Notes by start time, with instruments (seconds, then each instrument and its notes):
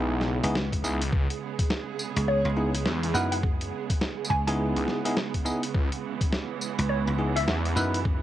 Already playing: detuned saw bass B1, string section C#3 E3 G#3 B3, tine electric piano B3 D#4 E4 G#4
0.21 snare
0.43 slap bass C#2, tine electric piano B3 D#4 E4 G#4, closed hi-hat
0.55 snare
0.72 kick, closed hi-hat
0.84 detuned saw bass C#2, tine electric piano B3 D#4 E4 G#4, tambourine
1.02 closed hi-hat
1.13 detuned saw bass C#2, string section G#4, kick
1.30 closed hi-hat
1.59 kick, closed hi-hat
1.70 snare
1.99 tambourine
2.16 slap bass C#2, cross-stick, closed hi-hat
2.28 synth pluck C#5
2.45 slap bass C#2
2.57 tine electric piano B3 D#4 E4 G#4
2.75 cross-stick, closed hi-hat
2.86 detuned saw bass E2, snare
3.03 closed hi-hat
3.14 slap bass F#2, tine electric piano B3 D#4 E4 B4, synth pluck F#5, tambourine
3.32 synth pluck F#5, closed hi-hat
3.43 kick
3.61 closed hi-hat
3.90 kick, closed hi-hat
4.01 snare
4.25 tambourine
4.30 slap bass C#2, synth pluck G#5, kick
4.47 slap bass C#2, tine electric piano B3 D#4 E4 G#4, synth pluck G#5, cross-stick, closed hi-hat
4.76 detuned saw bass C#2, closed hi-hat
4.88 snare
5.05 tine electric piano B3 D#4 E4 G#4, closed hi-hat
5.17 snare
5.34 kick, closed hi-hat
5.45 tine electric piano B3 D#4 E4 G#4, tambourine
5.63 closed hi-hat
5.74 detuned saw bass C#2, string section E3, kick
5.92 closed hi-hat
6.21 kick, closed hi-hat
6.33 snare
6.61 tambourine
6.79 slap bass C#2, cross-stick, closed hi-hat
6.89 synth pluck C#5
7.07 slap bass C#2
7.18 tine electric piano B3 D#4 E4 G#4
7.36 synth pluck E5, cross-stick, closed hi-hat
7.48 detuned saw bass E2, snare
7.65 closed hi-hat
7.76 slap bass F#2, tine electric piano B3 D#4 E4 B4, tambourine
7.94 closed hi-hat
8.05 kick